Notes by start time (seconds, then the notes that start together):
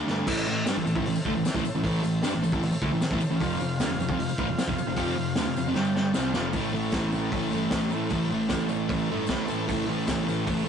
Already playing: D3 A4 D5 F5
0.07 G2 A3 D4, snare, tambourine
0.17 tambourine
0.24 A1 A2 E3 A3 A4 C5 E5, kick, crash
0.37 tambourine
0.47 A1 A2 E3, tambourine
0.66 G2 G3 D4, snare, open hi-hat, tambourine
0.76 A1 A2 E3
0.85 A1 A2 E3, tambourine
0.95 A1 A2 E3, kick
1.05 A1 A2 E3, open hi-hat, tambourine
1.16 muted distorted electric guitar stroke, muted picked electric bass stroke, tambourine
1.25 D2 D3 A3, kick
1.36 A1 A2 E3
1.45 muted distorted electric guitar stroke, muted picked electric bass stroke, snare, open hi-hat, tambourine
1.54 A1 A2 E3, kick
1.64 muted picked electric bass stroke, muted distorted electric guitar stroke, tambourine
1.74 A1 A2 E3
1.83 A1 A2 E3 A3, kick, open hi-hat, tambourine
1.95 tambourine
2.02 A1 A2 E3, tambourine
2.22 G2 G3 D4, snare, open hi-hat, tambourine
2.31 A1 A2 E3, tambourine
2.42 A1 A2 E3, tambourine
2.52 A1 A2 E3, kick, tambourine
2.62 A1 A2 E3, open hi-hat, tambourine
2.72 muted distorted electric guitar stroke, muted picked electric bass stroke, tambourine
2.82 D2 D3 A3, kick
2.92 A1 A2 E3
3.01 muted picked electric bass stroke, muted distorted electric guitar stroke, snare, open hi-hat, tambourine
3.11 A1 A2 E3, kick
3.21 muted picked electric bass stroke, muted distorted electric guitar stroke, tambourine
3.30 A1 A2 E3
3.36 F4 C5 F5
3.40 F1 F2 C3 F3, kick, open hi-hat, tambourine
3.52 tambourine
3.58 F1 F2 C3, tambourine
3.78 D2 D3 A3, snare, open hi-hat, tambourine
3.89 F1 F2 C3
3.97 F1 F2, tambourine
4.02 C3
4.08 F1 F2 C3, kick
4.18 F1 F2 C3, open hi-hat, tambourine
4.28 muted picked electric bass stroke, muted distorted electric guitar stroke, tambourine
4.38 A1 A2 E3, kick, tambourine
4.47 F1 F2 C3
4.57 muted picked electric bass stroke, muted distorted electric guitar stroke, snare, open hi-hat, tambourine
4.68 F1 F2 C3, kick
4.77 muted picked electric bass stroke, muted distorted electric guitar stroke, tambourine
4.87 F1 F2 C3, tambourine
4.96 F1 F2 C3 F3, kick, open hi-hat, tambourine
5.09 tambourine
5.16 F1 F2 C3
5.28 tambourine
5.35 D2 D3 A3, snare, open hi-hat, tambourine
5.45 F1 F2 C3, tambourine
5.55 F1 F2 C3, tambourine
5.66 F1 F2 C3
5.74 G1 G2 D3 G3 G4 D5 G5, snare, tambourine
5.84 tambourine
5.94 A5, snare
6.04 tambourine
6.13 C2 C3 G3 C4 F4 C5 F5 G5, snare, tambourine
6.25 tambourine
6.33 F1 F2 C3 F3 F5, snare, tambourine
6.53 A1 A2 E3 A3 A4 C5, kick, open hi-hat, tambourine
6.57 E5
6.72 A1 E3 A3
6.92 A1 A2 E3 A3, kick, snare, open hi-hat, tambourine
7.12 A1 E3 A3, tambourine
7.32 A1 A2 E3 A3, kick, open hi-hat
7.50 G1 A2 E3 A3, tambourine
7.70 A1 A2 E3, kick, snare, open hi-hat, tambourine
7.75 A3
7.90 A2 A3, tambourine
7.95 E3
8.10 A1 A2 E3 A3, kick, open hi-hat, tambourine
8.30 A1 E3 A3
8.49 A1 A2 E3 A3, kick, snare, open hi-hat, tambourine
8.69 A1 E3 A3, tambourine
8.89 A1 A2 E3 A3, kick, open hi-hat
9.09 G1 A2 E3 A3
9.27 A1 A2 E3, kick, snare, open hi-hat, tambourine
9.31 A3
9.47 A2 E3 A3, tambourine
9.67 A1 A2 E3 A3 A4 C5 E5, kick, open hi-hat, tambourine
9.87 A1 E3 A3
10.06 A1 A2 E3 A3, kick, snare, open hi-hat, tambourine
10.27 A1 E3 A3, tambourine
10.46 A1 A2 E3 A3, kick, open hi-hat
10.65 A3